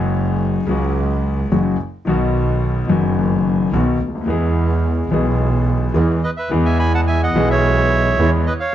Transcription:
Already playing: F#1 F#2 C#3 F#3 G#3 F#4
0.67 C#2 C#3 F#3 G#3
0.71 F#4
1.51 F#1 F#2 C#3 F#3 G#3 F#4
2.05 B1 B2 D#3 F#3 B3
2.09 F#4
2.88 F#1 F#2 D#3 F#3 B3
2.92 F#4
3.73 B1 B2 D#3 F#3 B3 F#4
4.01 D2
4.08 C#2
4.15 D2
4.21 D#2
4.26 E2 E3 G#3 B3
4.30 G#4
5.10 B1 B2 E3 G#3 B3
5.14 G#4
5.94 E2 E3 G#3 B3 G#4
6.24 B4 D#5
6.37 B4 E5
6.50 E2 E3 G#3 B3 G#4
6.65 E5 G#5
6.79 G#5 B5
6.95 F#5 A5
7.07 E5 G#5
7.23 D#5 F#5
7.34 B1 B2 E3 G#3 B3
7.38 G#4
7.50 C#5 E5
8.19 E2 E3 G#3 B3 G#4
8.47 B4 D#5
8.60 C#5 F5

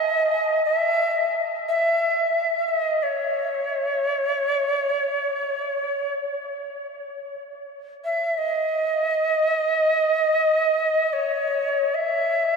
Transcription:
Already playing: D#5
0.65 E5
1.68 E5
2.68 D#5
3.03 C#5
8.04 E5
8.38 D#5
11.13 C#5
11.94 E5

